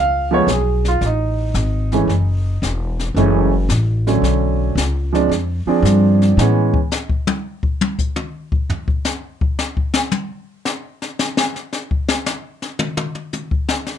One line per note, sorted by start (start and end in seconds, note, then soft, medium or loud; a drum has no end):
0.00 0.46 C#2 medium
0.00 0.32 F5 loud
0.31 0.46 F3 medium
0.31 0.47 G#3 medium
0.31 0.47 A3 medium
0.31 0.47 B3 medium
0.31 0.49 C#5 medium
0.47 0.99 B1 medium
0.47 snare medium
0.47 hi-hat pedal medium
0.51 0.86 G#4 medium
0.85 1.03 F4 medium
0.85 snare soft
1.01 1.53 A1 medium
1.01 brush sweep soft
1.01 snare soft
1.06 2.61 D#4 medium
1.54 2.07 G#1 medium
1.54 snare medium
1.54 hi-hat pedal medium
1.92 2.08 E3 medium
1.92 2.08 G#3 medium
1.92 2.08 A3 medium
1.92 2.08 C#4 medium
1.92 snare soft
2.08 2.60 F#1 medium
2.08 brush sweep soft
2.08 snare soft
2.62 3.14 E1 medium
2.62 snare medium
2.62 hi-hat pedal medium
3.00 snare soft
3.15 3.68 F#1 medium
3.15 3.50 E3 medium
3.15 3.50 G#3 medium
3.15 3.50 A3 medium
3.15 3.50 C#4 medium
3.15 brush sweep soft
3.15 snare soft
3.69 4.21 A1 medium
3.69 snare medium
3.69 hi-hat pedal medium
4.07 4.74 D3 medium
4.07 4.74 F#3 medium
4.07 4.75 A3 medium
4.07 4.75 C#4 medium
4.07 snare soft
4.22 4.75 B1 medium
4.22 brush sweep soft
4.22 snare soft
4.75 5.28 C#2 medium
4.75 snare medium
4.75 hi-hat pedal medium
5.13 5.28 F3 medium
5.13 5.29 G#3 medium
5.13 5.29 C4 medium
5.13 5.29 D4 medium
5.13 snare soft
5.29 5.64 F2 medium
5.29 brush sweep soft
5.29 snare soft
5.66 6.34 F3 medium
5.66 6.35 C4 medium
5.66 6.35 D4 medium
5.66 6.35 G#4 medium
5.66 muted upright bass stroke soft
5.82 6.35 G2 loud
5.82 snare medium
5.82 hi-hat pedal medium
6.22 snare soft
6.37 6.73 A2 medium
6.37 6.75 E3 medium
6.37 6.75 G#3 medium
6.37 6.76 B3 medium
6.37 6.76 C#4 medium
6.37 snare loud
6.74 kick medium
6.92 snare medium
6.92 hi-hat pedal medium
7.10 kick medium
7.27 high tom loud
7.63 kick medium
7.81 high tom loud
7.99 kick medium
7.99 hi-hat pedal medium
8.16 mid tom medium
8.52 kick medium
8.70 floor tom medium
8.88 kick medium
9.05 snare medium
9.05 hi-hat pedal medium
9.41 kick medium
9.59 snare medium
9.77 kick medium
9.94 snare loud
10.11 hi-hat pedal medium
10.11 high tom loud
10.65 snare medium
11.02 snare medium
11.19 snare medium
11.19 hi-hat pedal medium
11.37 snare medium
11.56 snare soft
11.73 snare soft
11.91 kick medium
12.08 snare loud
12.26 snare loud
12.26 hi-hat pedal medium
12.62 snare medium
12.79 mid tom medium
12.97 mid tom loud
13.15 mid tom soft
13.33 hi-hat pedal soft
13.33 mid tom medium
13.51 kick medium
13.69 snare medium
13.87 snare soft